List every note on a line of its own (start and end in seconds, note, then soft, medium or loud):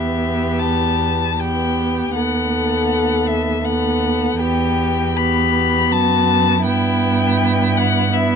0.00 2.12 E2 soft
0.00 1.36 B3 soft
0.00 1.35 G4 soft
0.00 0.61 E5 soft
0.59 1.41 A5 soft
1.39 2.15 B3 soft
1.39 2.18 G4 soft
1.39 2.15 G5 soft
2.15 4.36 D#2 soft
2.15 3.62 B3 soft
2.15 3.63 A4 soft
2.15 3.28 F#5 soft
3.27 3.65 E5 soft
3.63 4.38 B3 soft
3.63 4.41 A4 soft
3.63 4.39 F#5 soft
4.39 5.92 E2 soft
4.39 5.14 B3 soft
4.39 5.16 G4 soft
4.39 5.18 G5 medium
5.16 6.63 B3 soft
5.16 5.93 G4 soft
5.16 5.93 B5 medium
5.91 6.67 F#2 soft
5.91 6.65 F#4 soft
5.91 6.66 A5 medium
6.65 8.36 G2 soft
6.65 8.10 B3 soft
6.65 8.10 E4 soft
6.65 7.79 G5 medium
7.77 8.14 F#5 medium
8.13 8.36 B3 soft
8.13 8.36 E4 soft
8.13 8.36 E5 medium